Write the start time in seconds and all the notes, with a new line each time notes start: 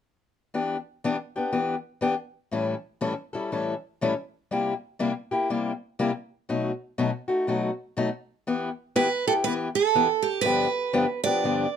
0.54 E3 B3 D4 G4
1.04 E3 B3 D4 G4
1.36 B3 D4 G4
1.52 E3 B3 D4 G4
2.01 E3 B3 D4 G4
2.51 A2 E3 G3 C#4 E4 A4
3.01 A2 E3 G3 C#4 E4 A4
3.33 G3 C#4 E4 A4
3.52 A2 E3 G3 C#4 E4 A4
4.01 A2 E3 G3 C#4 E4 A4
4.51 C3 G3 A#3 E4 G4
4.99 C3 G3 A#3 E4 G4
5.31 A#3 E4 G4
5.50 C3 G3 A#3 E4 G4
5.99 C3 G3 A#3 E4 G4
6.49 B2 F#3 A3 D#4 F#4
6.98 B2 F#3 A3 D#4 F#4
7.28 A3 D#4 F#4
7.47 B2 F#3 A3 D#4 F#4
7.97 B2 F#3 A3 D#4 F#4
8.47 E3 B3 E4 G4
8.96 E3 B3 E4 G4 B4
9.27 B3 E4 G4 A4
9.44 E3 B3 E4 G4 B4
9.75 A4
9.95 E3 B3 E4 G4
10.22 G4
10.41 G2 D3 F3 B3 D4 B4
10.46 G4
10.93 G2 D3 F3 B3 D4 G4
11.24 F3 B3 D4 G4 D5
11.44 G2 D3 F3 B3 D4 G4